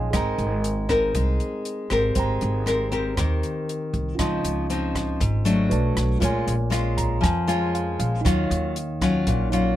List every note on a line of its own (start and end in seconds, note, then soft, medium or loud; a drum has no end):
0.00 0.12 A#1 medium
0.00 0.11 F3 soft
0.00 0.11 G#4 soft
0.00 0.15 C#5 soft
0.00 0.13 D#5 medium
0.00 0.15 F5 medium
0.00 0.12 G#5 medium
0.00 0.15 C6 medium
0.11 0.37 G#1 medium
0.11 1.12 G#3 medium
0.11 0.85 C4 medium
0.11 0.86 D#4 soft
0.11 2.11 G#4 medium
0.11 0.86 A#4 medium
0.11 2.12 D#5 soft
0.11 2.13 G5 soft
0.11 kick medium
0.11 cross-stick medium
0.11 closed hi-hat soft
0.16 2.14 A#5 medium
0.38 1.11 G#1 medium
0.38 closed hi-hat soft
0.64 closed hi-hat soft
0.89 1.87 C4 medium
0.89 1.87 D#4 medium
0.89 1.87 A#4 medium
0.89 kick medium
0.89 cross-stick medium
0.89 closed hi-hat soft
1.15 1.38 C2 loud
1.15 2.14 G#3 medium
1.15 kick soft
1.15 closed hi-hat soft
1.40 closed hi-hat soft
1.65 closed hi-hat soft
1.90 2.14 G#1 medium
1.90 2.63 C4 medium
1.90 2.63 G4 medium
1.90 2.64 A#4 medium
1.90 cross-stick medium
1.90 closed hi-hat soft
2.15 2.40 G#1 medium
2.15 3.15 G#3 soft
2.15 4.15 C5 soft
2.15 4.16 G5 soft
2.15 kick medium
2.15 closed hi-hat soft
2.19 4.17 A#5 medium
2.41 3.14 G#1 medium
2.41 closed hi-hat soft
2.66 2.88 C4 medium
2.66 2.88 G4 medium
2.66 2.88 A#4 medium
2.66 cross-stick medium
2.66 closed hi-hat soft
2.92 3.13 C4 medium
2.92 3.14 G4 medium
2.92 3.14 A#4 medium
2.92 closed hi-hat soft
3.17 3.41 D#2 medium
3.17 4.17 D#3 medium
3.17 4.15 C4 medium
3.17 4.15 G4 soft
3.17 4.16 A#4 medium
3.17 kick medium
3.17 cross-stick medium
3.17 closed hi-hat soft
3.43 closed hi-hat soft
3.69 closed hi-hat soft
3.93 4.17 C2 medium
3.93 kick medium
3.93 closed hi-hat soft
4.15 4.42 C#2 medium
4.15 5.18 C#3 medium
4.15 5.67 C#4 soft
4.15 5.66 F4 medium
4.19 4.66 F3 medium
4.19 4.66 C4 medium
4.19 4.66 D#4 soft
4.19 5.68 D#5 soft
4.19 5.69 C6 medium
4.19 kick medium
4.19 cross-stick medium
4.19 closed hi-hat medium
4.44 5.16 C#2 medium
4.44 closed hi-hat soft
4.70 5.20 F3 soft
4.70 5.20 C4 medium
4.70 5.21 D#4 medium
4.70 closed hi-hat soft
4.95 kick medium
4.95 cross-stick medium
4.95 closed hi-hat soft
5.20 5.68 G#1 medium
5.20 5.69 G#2 medium
5.20 kick medium
5.20 closed hi-hat medium
5.45 6.18 F#3 medium
5.45 6.17 A3 medium
5.45 6.18 D4 medium
5.45 closed hi-hat soft
5.69 5.95 B1 medium
5.69 6.21 F#4 medium
5.69 6.21 B4 soft
5.69 6.22 D5 soft
5.69 6.23 A5 medium
5.69 closed hi-hat soft
5.97 6.20 B1 medium
5.97 cross-stick medium
5.97 closed hi-hat soft
6.19 6.45 A#1 medium
6.19 7.20 A#2 medium
6.19 6.54 G#3 soft
6.19 6.54 C#4 medium
6.19 8.19 F4 soft
6.19 6.54 F4 medium
6.19 8.20 A#4 soft
6.19 8.21 C#5 soft
6.19 kick medium
6.19 closed hi-hat medium
6.25 7.21 G#5 medium
6.47 7.19 A#1 medium
6.47 closed hi-hat soft
6.70 7.22 G#3 soft
6.70 7.22 C#4 soft
6.70 7.22 F4 medium
6.70 cross-stick medium
6.70 closed hi-hat soft
6.97 7.21 A#5 soft
6.97 kick medium
6.97 closed hi-hat soft
7.21 7.95 F2 medium
7.21 8.21 F3 medium
7.21 7.47 G#5 medium
7.21 kick medium
7.21 cross-stick medium
7.21 closed hi-hat medium
7.47 8.20 G#3 medium
7.47 8.20 C#4 medium
7.47 8.20 F4 medium
7.47 7.73 G#5 medium
7.47 closed hi-hat soft
7.75 7.98 F5 soft
7.75 closed hi-hat soft
7.99 8.23 A#1 loud
7.99 8.23 F5 soft
7.99 closed hi-hat soft
8.21 8.49 D#2 medium
8.21 9.24 D#3 medium
8.21 8.75 F#3 medium
8.21 9.47 D#4 medium
8.21 9.49 C#5 soft
8.25 8.75 C#4 medium
8.25 8.76 F4 medium
8.25 9.50 F5 medium
8.25 kick medium
8.25 cross-stick medium
8.25 closed hi-hat medium
8.51 9.22 D#2 medium
8.51 closed hi-hat soft
8.76 closed hi-hat soft
9.01 9.48 F#3 medium
9.01 9.48 C#4 medium
9.01 9.48 F4 medium
9.01 kick medium
9.01 cross-stick medium
9.01 closed hi-hat soft
9.27 9.76 A#1 medium
9.27 9.76 A#2 medium
9.27 kick medium
9.27 closed hi-hat medium
9.50 9.76 F#3 medium
9.50 9.76 C#4 medium
9.50 9.76 D#4 soft
9.50 9.76 F4 medium
9.50 9.76 C#5 soft
9.50 9.76 F5 soft
9.50 closed hi-hat soft